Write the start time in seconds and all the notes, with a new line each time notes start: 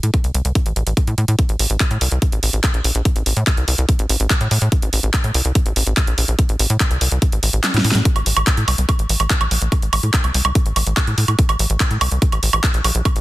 0.03 A2, closed hi-hat
0.14 kick, closed hi-hat
0.24 C2, closed hi-hat
0.34 C2, closed hi-hat
0.45 C2, closed hi-hat
0.55 kick, closed hi-hat
0.66 A1, closed hi-hat
0.76 A1, closed hi-hat
0.87 A1, closed hi-hat
0.97 kick, closed hi-hat
1.07 A2, closed hi-hat
1.18 A2, closed hi-hat
1.28 A2, closed hi-hat
1.39 kick, closed hi-hat
1.49 A1, closed hi-hat
1.59 A1, open hi-hat
1.70 A1, closed hi-hat
1.80 kick, clap, closed hi-hat
1.91 A2, closed hi-hat
2.01 C2, open hi-hat
2.12 C2, closed hi-hat
2.22 kick, closed hi-hat
2.32 A1, closed hi-hat
2.43 A1, open hi-hat
2.53 A1, closed hi-hat
2.64 kick, clap, closed hi-hat
2.74 A#1, closed hi-hat
2.84 A#1, open hi-hat
2.95 A#1, closed hi-hat
3.05 kick, closed hi-hat
3.16 A1, closed hi-hat
3.26 A1, open hi-hat
3.37 A2, closed hi-hat
3.47 kick, clap, closed hi-hat
3.57 C2, closed hi-hat
3.68 C2, open hi-hat
3.78 C2, closed hi-hat
3.89 kick, closed hi-hat
3.99 A1, closed hi-hat
4.09 A1, open hi-hat
4.20 A1, closed hi-hat
4.30 kick, clap, closed hi-hat
4.41 A2, closed hi-hat
4.51 A2, open hi-hat
4.62 A2, closed hi-hat
4.72 kick, closed hi-hat
4.82 A1, closed hi-hat
4.93 A1, open hi-hat
5.03 A1, closed hi-hat
5.14 kick, clap, closed hi-hat
5.24 A2, closed hi-hat
5.34 C2, open hi-hat
5.45 C2, closed hi-hat
5.55 kick, closed hi-hat
5.66 A1, closed hi-hat
5.76 A1, open hi-hat
5.87 A1, closed hi-hat
5.97 kick, clap, closed hi-hat
6.07 A#1, closed hi-hat
6.18 A#1, open hi-hat
6.28 A#1, closed hi-hat
6.39 kick, closed hi-hat
6.49 A1, closed hi-hat
6.59 A1, open hi-hat
6.70 A2, closed hi-hat
6.80 kick, clap, closed hi-hat
6.91 C2, closed hi-hat
7.01 C2, open hi-hat
7.12 C2, closed hi-hat
7.22 kick, closed hi-hat
7.32 A1, closed hi-hat
7.43 A1, open hi-hat
7.53 A1, closed hi-hat
7.64 snare, clap, closed hi-hat
7.74 A2, snare, closed hi-hat
7.84 A2, open hi-hat
7.91 A2, snare, closed hi-hat
8.05 kick, closed hi-hat
8.16 A1, closed hi-hat, high woodblock
8.26 A1, open hi-hat
8.37 A1, closed hi-hat, high woodblock
8.47 kick, clap, closed hi-hat
8.57 A2, closed hi-hat
8.68 C2, open hi-hat, high woodblock
8.78 C2, closed hi-hat
8.89 kick, closed hi-hat, high woodblock
8.99 A1, closed hi-hat
9.09 A1, open hi-hat
9.20 A1, closed hi-hat, high woodblock
9.30 kick, clap, closed hi-hat
9.41 A#1, closed hi-hat, high woodblock
9.51 A#1, open hi-hat
9.62 A#1, closed hi-hat
9.72 kick, closed hi-hat, high woodblock
9.82 A1, closed hi-hat
9.93 A1, open hi-hat, high woodblock
10.03 A2, closed hi-hat
10.14 kick, clap, closed hi-hat
10.24 C2, closed hi-hat, high woodblock
10.34 C2, open hi-hat
10.45 C2, closed hi-hat, high woodblock
10.55 kick, closed hi-hat
10.66 A1, closed hi-hat
10.76 A1, open hi-hat, high woodblock
10.86 A1, closed hi-hat
10.97 kick, clap, closed hi-hat, high woodblock
11.07 A2, closed hi-hat
11.18 A2, open hi-hat
11.28 A2, closed hi-hat, high woodblock
11.39 kick, closed hi-hat
11.49 A1, closed hi-hat, high woodblock
11.59 A1, open hi-hat
11.70 A1, closed hi-hat
11.80 kick, clap, closed hi-hat, high woodblock
11.91 A2, closed hi-hat
12.01 C2, open hi-hat, high woodblock
12.12 C2, closed hi-hat
12.22 kick, closed hi-hat
12.32 A1, closed hi-hat, high woodblock
12.43 A1, open hi-hat
12.53 A1, closed hi-hat, high woodblock
12.64 kick, clap, closed hi-hat
12.74 A#1, closed hi-hat
12.84 A#1, open hi-hat, high woodblock
12.95 A#1, closed hi-hat
13.05 kick, closed hi-hat, high woodblock
13.16 A1, closed hi-hat